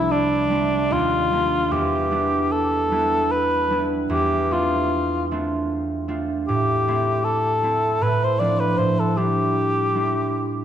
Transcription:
Already playing: C2 G3 A3 C4 D4 E4
0.11 D4
0.50 G3 A3 C4 D4
0.91 D#2 F4
1.32 G3 A#3 D4
1.72 E2 G4
2.11 G3 B3 D4 E4
2.52 A4
2.91 G3 B3 D4 E4
3.31 B4
3.70 G3 B3 D4 E4
4.10 E2 G4
4.51 A3 C4 D4 F4
5.31 A3 C4 D4 F4
6.08 A3 C4 D4 F4
6.48 A2 G4
6.88 A3 C4 E4
7.24 A4
7.63 A3 C4 E4
8.01 A2 B4
8.24 C5
8.39 F3 C4 D4 E4 D5
8.60 B4
8.78 A2 C5
9.00 A4
9.16 G3 C4 D4 E4 G4
9.94 G3 C4 D4 E4

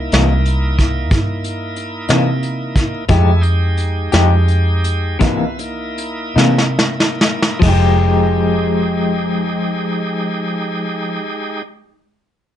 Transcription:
Already playing: A#3 D#4 E4
0.12 C2 C3 E3 A#3 D#4, snare, closed hi-hat
0.45 closed hi-hat
0.79 kick, closed hi-hat
1.11 G2, kick, closed hi-hat
1.44 closed hi-hat
1.76 closed hi-hat
2.09 C3 E3 A#3 D#4, snare, closed hi-hat
2.43 closed hi-hat
2.75 kick, closed hi-hat
3.09 F2 F3 G#3 A3 D#4 E4 G4 G#4, kick, closed hi-hat
3.41 G#3 D#4 G4, closed hi-hat
3.77 closed hi-hat
4.12 F2 F3 G#3 D#4 G4, snare, closed hi-hat
4.48 closed hi-hat
4.84 closed hi-hat
5.19 C2 C3 E3 A#3 B3 D#4 E4 F4, kick, closed hi-hat
5.59 A#3 D#4 E4, closed hi-hat
5.98 closed hi-hat
6.36 C3 E3 A#3 D#4, snare
6.58 snare
6.79 snare
7.00 snare
7.21 snare
7.42 snare
7.60 F1 F3 G#3 D#4 G4, kick, crash
7.65 D#4 G4
8.07 G#3 D#4 G4

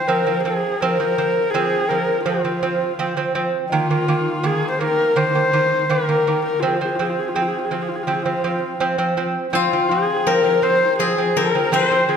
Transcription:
0.08 F3 C4 A#4
0.26 F3 C4
0.44 F3 C4 G#4
0.81 F3 C4 A#4
1.00 F3 C4
1.18 F3 C4
1.50 G#4
1.54 F3 C4
1.89 F3 C4 A#4
2.25 F3 C4 F4
2.45 F3 C4
2.63 F3 C4
2.99 F3 C4
3.17 F3 C4
3.35 F3 C4
3.71 D#3 A#3 F4
3.90 D#3 A#3
4.08 D#3 A#3
4.43 D#3 A#3 G#4
4.70 C5
4.79 D#3 A#3 A#4
5.16 D#3 A#3 C5
5.35 D#3 A#3
5.53 D#3 A#3
5.90 D#3 A#3 A#4
6.09 D#3 A#3
6.27 D#3 A#3
6.45 A#4
6.60 F3 C4 F4
6.67 G#4
6.76 F4
6.81 F3 C4
6.85 G#4
6.96 C4 F4
7.00 F3 G#4
7.10 F4
7.19 G#4
7.29 F4
7.34 F3 C4 G#4
7.42 F4
7.48 G#4
7.58 F4
7.65 G#4
7.71 F3 C4 F4
7.82 G#4
7.89 F4
7.95 G#4
8.03 F3 F4
8.08 C4
8.12 G#4
8.23 F3 C4 F4
8.44 F3 C4
8.80 F3 C4
8.98 F3 C4
9.17 F3 C4
9.53 F3 C4 F4
9.73 F3 C4
9.89 F3 C4 G#4
10.27 F3 C4 A#4
10.43 F3 C4
10.62 F3 C4 C5
10.99 F3 C4 G#4
11.18 F3 C4
11.37 F3 C4 A#4
11.55 F3 C4
11.72 F3 C4 C5
11.91 F3 C4
12.08 F3 C4 G#4

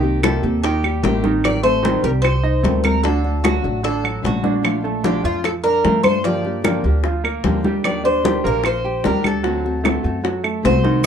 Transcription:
Already playing: C2 D#3 D#4 G4
0.03 A#3 C4 G4, high conga
0.23 C3 D#3 G3 A#3 C4 G4 A4, high bongo, high conga, claves
0.43 D#2 A#3 C4 G4, high bongo, high conga
0.63 D#3 D#4 G4, muted nylon-string guitar stroke, high bongo, high conga
0.84 G3 G4, high bongo, high conga, claves
1.02 A1 C3 D#3 A#3 C4 G4, high bongo, low bongo, high conga
1.22 D#3 A#3 C4 D#4 G4, high bongo, high conga
1.44 D#3 G3 C4 D5, high bongo, high conga, claves
1.63 G3 A3 C4 A4 C5, high conga
1.83 D#3 G3 C4 D#4, high bongo, high conga
2.03 C2 G3 C4 G4 A#4, high conga
2.22 C5, muted nylon-string guitar stroke, high bongo, high conga, claves
2.44 D#4 D#5, high conga
2.63 D2 D#3 G3 A3 C4 A4, high bongo, low bongo, high conga
2.84 G3 C4 A#4, high conga, claves
3.03 D3 A3 D4 F#4 A4, high bongo, high conga
3.23 A3 D4 F#4, high conga
3.43 D3 F#3 A3 D4 F#4, high bongo, high conga, claves
3.62 A1 A3 D4 F#4, high bongo, high conga
3.83 D3 D4 A4, muted nylon-string guitar stroke, high bongo, high conga
4.04 F#3 F#4, high bongo, high conga, claves
4.22 A#1 D3 A3 D4 F#4, high bongo, low bongo, high conga
4.26 F#4
4.43 D3 A3 D4 F#4, high bongo, high conga
4.62 F3 A3 D4 F4, high bongo, high conga, claves
4.82 A3 D4 F4 A4, high conga
5.03 D3 F3 A3 D4 F4 G4, high bongo, high conga
5.23 F2 F3 A3 D4 F4, high conga
5.44 A4, muted nylon-string guitar stroke, high bongo, high conga, claves
5.64 D4 A#4 D5, high conga
5.84 G2 F3 A3 D4 F4 A4, high bongo, low bongo, high conga
6.03 A3 D4 F4 C5, high conga, claves
6.24 D3 F3 A#3 D4 F4 G4 D5, high bongo, high conga
6.45 A#3 D4 G4, high conga
6.64 D3 F3 A#3 D4 G4 A#4, high bongo, high conga, claves
6.84 D2 A#3 D4 G4, high bongo, high conga
7.04 F3 F4, muted nylon-string guitar stroke, high bongo, high conga
7.24 A#3 A#4, high bongo, high conga, claves
7.44 D#2 D3 F3 A#3 D4 G4, high bongo, low bongo, high conga
7.64 G3 A#3 D4 G4, high bongo, high conga
7.84 D#3 G3 D4 G4 D5, high bongo, high conga, claves
8.04 G3 D4 G4 C5 D5, high conga
8.24 D#3 G3 D4 G4, high bongo, high conga
8.44 A#1 G3 A#3 D4 G4 A#4, high conga
8.64 C5, muted nylon-string guitar stroke, high bongo, high conga, claves
8.84 G4 G5, high conga
9.04 D2 D#3 G3 D4 G4 A#4 D5, high bongo, low bongo, high conga
9.24 G3 D4 G4 A4, high conga, claves
9.43 D3 F#3 A3 C4 F#4, high bongo, high conga
9.47 F#4
9.65 A3 C4 F#4, high conga
9.83 D3 A3 C4 F#4 A4, high bongo, high conga, claves
10.03 F#2 A3 C4 F#4, high bongo, high conga
10.24 F#3 F#4, muted nylon-string guitar stroke, high bongo, high conga
10.44 A3 A4, high bongo, high conga, claves
10.63 C2 D3 A3 C4 F#4 C5, high bongo, low bongo, high conga
10.84 D#3 A3 C4 D#4 F#4, high bongo, high conga

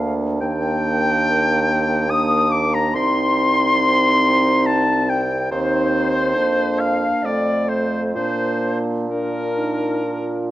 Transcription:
Already playing: D2 A#3 D4 F5
0.40 D#2 A#3 D4 G5
2.10 A#3 D4 D#6
2.50 D6
2.71 A#5
2.94 C2 C4 D#4 C6
4.65 A5
5.09 G5
5.51 D#2 C4 D#4 C5
6.36 F2 A#3 D4
6.79 F5
7.23 F2 A3 C4 D5
7.69 C5
8.15 A#2 A#3 D4 C5
9.10 D4 A#4
9.57 D#4
10.04 F4

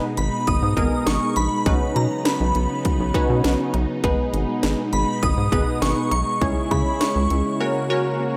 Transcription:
Already playing: B2 G#3 D#4
0.03 D#4
0.17 G#1 G#3 B5, closed hi-hat
0.33 B3
0.47 G#1 D#4 D#6, kick, closed hi-hat
0.62 G#2 G#3
0.77 G#1 B3 D#4 G#4 A#4 D#6, kick, closed hi-hat
0.92 D#4
1.07 G#1 G#3 C#6, snare, closed hi-hat
1.22 B3
1.36 A#1 D#4 B5, closed hi-hat
1.51 G#3
1.66 B1 C#3 B3 C#4 D#4 F#4 B4, kick, closed hi-hat
1.81 C#4
1.96 B2 F#3 A#5, closed hi-hat
2.11 B3
2.25 C#4 B5, snare, closed hi-hat
2.40 B1 F#3
2.55 B1 B3, closed hi-hat
2.70 C#4
2.85 F#3, kick, closed hi-hat
3.00 B1 B3
3.14 C#4 D#4 F#4 B4, kick, closed hi-hat
3.30 B2 F#3
3.44 B1 B3, snare, closed hi-hat
3.59 C#4
3.74 B1 F#3, closed hi-hat, cowbell
3.89 B3
4.04 G#1 B2 G#3 B3 D#4 G#4 B4, kick, closed hi-hat
4.19 B3
4.33 G#1 D#4, closed hi-hat
4.48 G#3
4.63 G#1 B3, snare, closed hi-hat
4.78 D#4
4.93 G#1 G#3 B5, closed hi-hat
5.08 B3
5.23 G#1 D#4 D#6, kick, closed hi-hat
5.38 G#2 G#3
5.52 G#1 B3 D#4 G#4 B4 D#6, kick, closed hi-hat
5.67 D#4
5.82 G#1 G#3 C#6, snare, closed hi-hat
5.97 B3
6.11 B1 D#4 C#6, closed hi-hat, cowbell
6.27 G#3
6.41 C#2 C#3 C#4 E4 G#4 C#5, kick, closed hi-hat
6.56 E4
6.71 C#3 G#3 B5, kick, closed hi-hat, cowbell
6.86 C#4
7.01 E4 C#6, snare, closed hi-hat
7.16 C#2 G#3
7.30 C#2 C#4, closed hi-hat
7.46 E4
7.60 A#3 C#4 F#4 A#4 C#5
7.75 C#4
7.90 C#4 F#4 A#4 C#5
8.05 A#3
8.20 C#4

